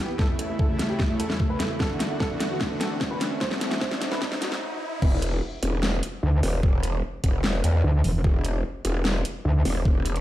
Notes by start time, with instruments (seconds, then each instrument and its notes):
Already playing: supersaw synth E3 B3 G4, ambient pad E4 B4 F#5, riser
0.09 grand piano B3
0.19 supersaw synth E2 C#3 A3 E4, grand piano A4, kick, snare
0.29 grand piano A3
0.39 grand piano A3, closed hi-hat
0.47 grand piano A3, ambient pad A4
0.59 grand piano A4, ambient pad E5, kick
0.66 grand piano A3, ambient pad B5
0.79 grand piano A3, snare, closed hi-hat
0.89 grand piano G4
0.99 grand piano A3, kick, snare
1.10 grand piano A3
1.20 grand piano A4, closed hi-hat
1.30 grand piano A3, snare
1.40 grand piano A3, kick
1.50 grand piano B4
1.60 grand piano A3, snare, closed hi-hat
1.70 grand piano A3
1.80 supersaw synth D3 A3 F#4, ambient pad E3, grand piano A4, kick, snare
1.90 grand piano D4
2.00 grand piano D4, snare, closed hi-hat
2.05 ambient pad D4
2.10 grand piano D4
2.20 grand piano A4, kick, snare
2.30 grand piano D4
2.40 grand piano D4, snare, closed hi-hat
2.51 grand piano F#4
2.61 grand piano D4, kick, snare
2.71 grand piano D4
2.81 grand piano A4, snare, closed hi-hat
2.91 grand piano D4
3.01 grand piano D4, kick, snare
3.11 grand piano B4
3.21 grand piano D4, snare, closed hi-hat
3.31 grand piano D4
3.41 supersaw synth E2 C3 A3, grand piano C5, kick, snare
3.51 grand piano C4, snare
3.57 grand piano C4, ambient pad F#4, snare, closed hi-hat
3.71 grand piano C4, snare, closed hi-hat
3.78 grand piano C5, ambient pad C#5, kick, snare
3.91 grand piano C4, snare
4.01 grand piano C4, snare, closed hi-hat
4.12 grand piano B4, snare
4.22 grand piano C4, kick, snare
4.32 grand piano C4, snare
4.42 grand piano F#4, snare, closed hi-hat
4.52 grand piano C4, snare
5.02 wobble bass E1, kick, crash
5.22 closed hi-hat
5.63 wobble bass E1, closed hi-hat
5.83 snare
6.03 closed hi-hat
6.23 wobble bass D2
6.43 wobble bass E1, open hi-hat
6.63 wobble bass E1, kick
6.83 closed hi-hat
7.24 wobble bass E1, kick, closed hi-hat
7.44 snare
7.64 wobble bass E2, closed hi-hat
7.84 wobble bass D2
8.04 wobble bass E1, open hi-hat
8.24 wobble bass E1, kick
8.45 closed hi-hat
8.85 wobble bass E1, closed hi-hat
9.05 snare
9.25 closed hi-hat
9.45 wobble bass D2
9.65 wobble bass E1, open hi-hat
9.85 wobble bass E1, kick
10.06 closed hi-hat
10.16 closed hi-hat